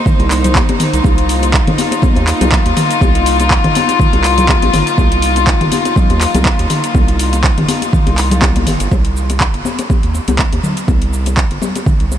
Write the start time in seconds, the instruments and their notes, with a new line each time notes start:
Already playing: string section A#3 D#4 C5
0.06 kick, mid tom, shaker
0.19 analog synth bass C2, closed hi-hat, muted conga
0.31 clap, open hi-hat, shaker
0.44 closed hi-hat, low conga, shaker
0.55 kick, clap, muted conga, high conga, shaker
0.69 closed hi-hat, high conga
0.80 open hi-hat, mid tom, muted conga, shaker
0.93 analog synth bass C2, closed hi-hat, shaker
1.04 analog synth bass C2, string section F4, kick, muted conga, high conga, shaker
1.18 closed hi-hat
1.29 open hi-hat, shaker
1.43 closed hi-hat, muted conga, shaker
1.54 kick, clap, shaker
1.67 analog synth bass G1, closed hi-hat, mid tom, muted conga
1.78 open hi-hat, high conga, shaker
1.92 closed hi-hat, muted conga, shaker
2.02 kick, high conga, low conga, shaker
2.16 analog synth bass D#2, closed hi-hat, muted conga
2.27 clap, open hi-hat, shaker
2.41 analog synth bass C2, closed hi-hat, high conga, low conga, shaker
2.52 kick, clap, muted conga, shaker
2.66 analog synth bass D#2, closed hi-hat
2.77 open hi-hat, mid tom, muted conga, shaker
2.91 closed hi-hat, shaker
3.01 analog synth bass C2, kick, muted conga, high conga, shaker
3.15 closed hi-hat
3.26 open hi-hat, shaker
3.40 closed hi-hat, muted conga, shaker
3.50 kick, clap, shaker
3.64 analog synth bass G1, closed hi-hat, mid tom, muted conga
3.75 open hi-hat, high conga, shaker
3.89 closed hi-hat, muted conga, shaker
4.00 kick, mid tom, shaker
4.13 analog synth bass C2, closed hi-hat, muted conga
4.24 clap, open hi-hat, shaker
4.38 closed hi-hat, low conga, shaker
4.49 kick, clap, muted conga, high conga, shaker
4.62 analog synth bass A#1, closed hi-hat, high conga
4.74 analog synth bass G1, open hi-hat, mid tom, muted conga, shaker
4.87 closed hi-hat, shaker
4.98 analog synth bass C2, kick, muted conga, high conga, shaker
5.12 closed hi-hat
5.22 open hi-hat, shaker
5.36 closed hi-hat, muted conga, shaker
5.47 kick, clap, shaker
5.61 analog synth bass G1, closed hi-hat, mid tom, muted conga
5.72 open hi-hat, high conga, shaker
5.85 closed hi-hat, muted conga, shaker
5.96 kick, high conga, low conga, shaker
6.10 analog synth bass D#2, closed hi-hat, muted conga
6.21 clap, open hi-hat, shaker
6.35 analog synth bass C2, closed hi-hat, high conga, low conga, shaker
6.45 kick, clap, muted conga, shaker
6.59 analog synth bass D#2, closed hi-hat
6.70 open hi-hat, mid tom, muted conga, shaker
6.84 closed hi-hat, shaker
6.95 analog synth bass C2, kick, muted conga, high conga, shaker
7.08 closed hi-hat
7.19 open hi-hat, shaker
7.33 closed hi-hat, muted conga, shaker
7.44 kick, clap, shaker
7.58 analog synth bass G1, closed hi-hat, mid tom, muted conga
7.68 open hi-hat, high conga, shaker
7.82 closed hi-hat, muted conga, shaker
7.93 kick, mid tom, shaker
8.07 analog synth bass C2, closed hi-hat, muted conga
8.18 clap, open hi-hat, shaker
8.31 closed hi-hat, low conga, shaker
8.42 kick, clap, muted conga, high conga, shaker
8.56 closed hi-hat, high conga
8.67 analog synth bass G1, open hi-hat, mid tom, muted conga, shaker
8.80 analog synth bass G1, closed hi-hat, shaker
8.92 analog synth bass C2, kick, muted conga, high conga, shaker
9.05 closed hi-hat
9.17 shaker
9.30 closed hi-hat, muted conga, shaker
9.40 kick, clap, shaker
9.54 analog synth bass G1, closed hi-hat
9.65 high conga, shaker
9.79 closed hi-hat, muted conga, shaker
9.90 kick, high conga, shaker
10.03 analog synth bass D#2, closed hi-hat
10.15 muted conga, shaker
10.28 analog synth bass C2, closed hi-hat, high conga, shaker
10.39 kick, clap, shaker
10.53 analog synth bass D#2, closed hi-hat, muted conga
10.63 mid tom, low conga, shaker
10.77 closed hi-hat, shaker
10.88 analog synth bass C2, kick, muted conga, high conga, shaker
11.02 closed hi-hat
11.13 shaker
11.26 closed hi-hat, muted conga, shaker
11.37 kick, clap, shaker
11.51 analog synth bass G1, closed hi-hat
11.62 high conga, low conga, shaker
11.76 closed hi-hat, muted conga, shaker
11.86 kick, mid tom, shaker
12.00 analog synth bass C2, closed hi-hat
12.12 muted conga, shaker